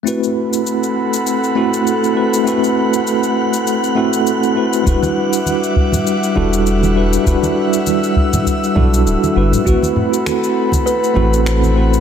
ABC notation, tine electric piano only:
X:1
M:4/4
L:1/8
Q:"Swing 16ths" 1/4=100
K:Ador
V:1 name="Tine electric piano"
[A,CEFB]4- [A,CEFB] [A,CEFA]2 [A,CEFB] | [A,CEFB]4- [A,CEFB] [A,CEFA]2 [A,CEFB] | [G,DEFB]4- [G,DEFB] [G,DEFA]2 [G,DEFB] | [G,DEFB]4- [G,DEFB] [G,DEFA]2 [G,DEFB] |
[A,CEFB]4- [A,CEFB] [A,CEFA]2 [A,CEFB] |]